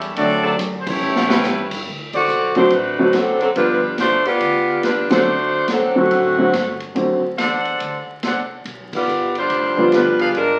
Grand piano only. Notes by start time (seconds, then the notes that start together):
2.56 D3 F#3 A3 C4 F#4
2.99 D3 F#3 A3 C4 F#4
3.56 D3 F3 G3 B3 F4
5.10 D3 F#3 A3 C4 A4
5.95 D3 F#3 A3 C4 F#4
6.38 D3 F#3 A3 C4 F#4
6.95 D3 F#3 A3 C4 F#4
9.77 D3 F3 G3 B3 F4